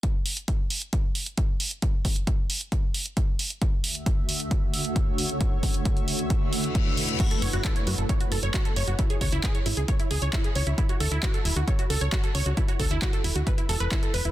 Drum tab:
CC |----------------|----------------|----------------|----------------|
HH |x-oxx-oxx-oxx-ox|x-oxx-oxx-oxx-ox|x-oxx-oxx-oxx-ox|x-oxxxoxx-oxx-ox|
CP |----------------|----------------|----------------|----------------|
BD |o---o---o---o---|o-o-o---o---o---|o---o---o---o---|o-o-o---o---o---|

CC |x---------------|----------------|----------------|----------------|
HH |xxoxxxoxxxoxxxox|xxoxxxoxxxoxxxox|xxoxxxoxxxoxxxox|xxoxxxoxxxoxxxox|
CP |----x-------x---|----x-------x---|----x-------x---|----x-------x---|
BD |o---o---o---o---|o-o-o---o---o---|o---o---o---o---|o-o-o---o---o---|